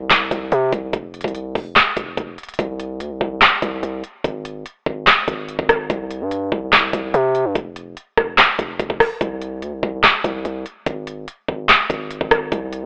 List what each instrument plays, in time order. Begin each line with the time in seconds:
Already playing: 808-style bass C2
0.10 snare, clap, closed hi-hat
0.31 808-style bass C2, kick, closed hi-hat
0.52 808-style bass C3, closed hi-hat
0.72 808-style bass C2, kick, closed hi-hat
0.93 808-style bass F1, kick, closed hi-hat
1.14 closed hi-hat
1.21 808-style bass C2, kick, closed hi-hat
1.28 closed hi-hat
1.35 closed hi-hat
1.55 808-style bass F1, kick, open hi-hat
1.76 snare, clap, closed hi-hat
1.97 808-style bass F1, kick, closed hi-hat
2.17 808-style bass F1, kick, closed hi-hat
2.38 closed hi-hat
2.43 closed hi-hat
2.49 closed hi-hat
2.54 closed hi-hat
2.59 808-style bass C2, kick, closed hi-hat
2.80 closed hi-hat
3.00 808-style bass D2, closed hi-hat
3.11 808-style bass C2
3.21 808-style bass C2, kick
3.42 snare, clap, closed hi-hat
3.62 808-style bass C2, kick, closed hi-hat
3.83 808-style bass C2, closed hi-hat
4.04 closed hi-hat
4.24 808-style bass G#1, kick, closed hi-hat
4.45 closed hi-hat
4.66 closed hi-hat
4.86 808-style bass G#1, kick
5.07 snare, clap, closed hi-hat
5.28 808-style bass G#1, kick, closed hi-hat
5.49 closed hi-hat
5.59 808-style bass G#1, kick
5.69 808-style bass G#1, kick, cross-stick, closed hi-hat
5.90 808-style bass C2, kick, closed hi-hat
6.11 closed hi-hat
6.21 808-style bass G2
6.31 closed hi-hat
6.52 808-style bass C2, kick
6.73 snare, clap, closed hi-hat
6.93 808-style bass C2, kick, closed hi-hat
7.14 808-style bass C3, closed hi-hat
7.35 closed hi-hat
7.45 808-style bass G2
7.55 808-style bass F1, kick, closed hi-hat
7.76 closed hi-hat
7.97 closed hi-hat
8.17 808-style bass F1, kick, cross-stick
8.38 snare, clap, closed hi-hat
8.59 808-style bass F1, kick, closed hi-hat
8.80 808-style bass F1, kick, closed hi-hat
8.90 kick
9.00 kick, cross-stick, open hi-hat
9.21 808-style bass C2, kick, closed hi-hat
9.42 closed hi-hat
9.62 808-style bass D2, closed hi-hat
9.73 808-style bass C2
9.83 808-style bass C2, kick
10.04 snare, clap, closed hi-hat
10.24 808-style bass C2, kick, closed hi-hat
10.45 808-style bass C2, closed hi-hat
10.66 closed hi-hat
10.86 808-style bass G#1, kick, closed hi-hat
11.07 closed hi-hat
11.28 closed hi-hat
11.48 808-style bass G#1, kick
11.69 snare, clap, closed hi-hat
11.90 808-style bass G#1, kick, closed hi-hat
12.11 closed hi-hat
12.21 808-style bass G#1, kick
12.31 808-style bass G#1, kick, cross-stick, closed hi-hat
12.52 808-style bass C2, kick, closed hi-hat
12.73 closed hi-hat